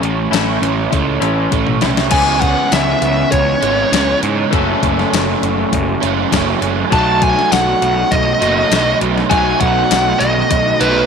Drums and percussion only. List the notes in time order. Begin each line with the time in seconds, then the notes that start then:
0.03 closed hi-hat
0.33 snare, closed hi-hat, tambourine
0.63 closed hi-hat
0.93 kick, closed hi-hat
1.22 closed hi-hat
1.52 kick, closed hi-hat, high tom
1.67 mid tom
1.81 snare, closed hi-hat
1.97 snare
2.11 kick, closed hi-hat, crash
2.42 kick, closed hi-hat
2.72 snare, closed hi-hat, tambourine
3.02 closed hi-hat
3.32 kick, closed hi-hat
3.63 closed hi-hat
3.93 snare, closed hi-hat, tambourine
4.23 closed hi-hat
4.53 kick, closed hi-hat
4.83 kick, closed hi-hat
4.99 snare
5.13 snare, closed hi-hat, tambourine
5.43 closed hi-hat
5.73 kick, closed hi-hat
6.03 closed hi-hat
6.32 kick, snare, closed hi-hat, tambourine
6.62 closed hi-hat
6.92 kick, closed hi-hat
7.22 kick, closed hi-hat
7.39 snare
7.52 snare, closed hi-hat, tambourine
7.82 closed hi-hat
8.12 kick, closed hi-hat
8.42 closed hi-hat
8.72 snare, closed hi-hat, tambourine
9.01 closed hi-hat
9.18 snare
9.31 kick, closed hi-hat
9.61 kick, closed hi-hat
9.91 snare, closed hi-hat, tambourine
10.21 closed hi-hat
10.51 kick, closed hi-hat
10.81 closed hi-hat